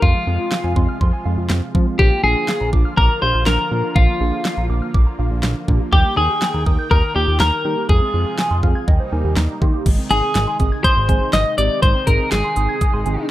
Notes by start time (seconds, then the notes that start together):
0.02 F2 C3 F3 G#3 F4, kick
0.15 G#3
0.27 F2 G#3 C4 F4
0.39 F4
0.52 F5, snare
0.64 F2 G#5
0.76 F2 G#3 C4 F4 C6, kick
0.89 F6
1.01 F2 C6, kick
1.13 G#5
1.25 F2 G#3 C4 F4 F5
1.38 F2 F4
1.50 F2 C4, snare
1.75 F3 G#3 C4 F4, kick
1.87 G#3 C4 F4
1.99 A#1 D3 F3 A#3 F4 G4, kick
2.11 A#3
2.24 A#1 A#3 D4 F4 G#4
2.36 F4
2.48 F5, snare
2.61 A#1 A#5
2.73 A#1 A#3 D4 F4 D6, kick
2.85 F6
2.97 A#1 A#4 D6, kick
3.10 A#5
3.22 A#1 A#3 D4 G4 C5 F5
3.34 A#1 F4
3.46 A#1 D4 A#4, snare
3.71 A#2 F3 A#3 D4 F4
3.84 A#3 D4 F4
3.96 A#1 F3 F4, kick
4.08 A#3
4.20 A#1 A#3 D4 G#4
4.33 F4
4.45 F5, snare
4.57 A#1 A#5
4.70 A#1 A#3 D4 F4 D6
4.82 F6
4.94 A#1 D6, kick
5.07 A#5
5.19 A#1 A#3 D4 F4 F5
5.31 A#1 F4
5.43 A#1 D4, snare
5.68 A#2 F3 A#3 D4 G4, kick
5.80 A#3 D4 F4
5.93 D#2 D#3 G3 G4 G5, kick
6.05 A#3
6.17 D#2 A#3 D#4 G4 G#4
6.30 G4
6.42 G5, snare
6.54 D#2 A#5
6.66 D#2 A#3 D#4 A#4 D#6, kick
6.79 G6
6.91 D#2 A#4 D#6, kick
7.03 A#5
7.16 D#2 A#3 D#4 F4 G4 G5
7.28 D#2 G4
7.40 D#2 D#4 A#4, snare
7.65 D#3 G3 A#3 D#4 G4
7.77 A#3 D#4 G4
7.89 F2 C3 F3 G#3 F4 G#4, kick
8.02 C4
8.14 F2 C4 F4 G#4
8.26 G#4
8.38 G#5, snare
8.51 F2 C6
8.63 F2 C4 F4 G#4 F5 F6, kick
8.75 G#6
8.88 D#2 G3 A#3 D#4 D#5 G5, kick
9.00 C5
9.12 D#2 A#3 D#4 G4 A#4 G#5
9.24 D#2 G4
9.37 D#2 D#4 A#5, snare
9.61 D#3 A#3 D#4 G4 C6, kick
9.74 A#3 D#4 G4
9.86 G#1 C3 D#3 G#3 D#4, kick, closed hi-hat, crash
9.98 C4
10.10 G#1 C4 D#4 G#4, closed hi-hat
10.23 G#4
10.35 G#1 G#5, snare, closed hi-hat
10.47 C6
10.60 G#1 C4 D#4 G#4 D#6, kick, closed hi-hat
10.72 G#6
10.84 C5 D#6, kick, closed hi-hat
10.97 G#1 C6
11.09 G#1 C4 D#4 G#4 G#5, kick, closed hi-hat
11.21 G#4
11.33 G#1 D#4 D#5, snare, closed hi-hat
11.58 G#1 G#3 C4 D#4 G4 D5, closed hi-hat
11.82 G#1 G#3 C5, kick, closed hi-hat
11.95 C4
12.07 G#1 C4 D#4 G#4 A#4, kick, closed hi-hat
12.20 G#4
12.32 G#1 G#4 G#5, snare, closed hi-hat
12.44 C6
12.56 G#1 C4 D#4 G#4 D#6, closed hi-hat
12.69 G#6
12.81 D#6, kick, closed hi-hat
12.93 G#1 C6
13.06 G#1 C4 D#4 G#4 G#5, closed hi-hat
13.18 G#4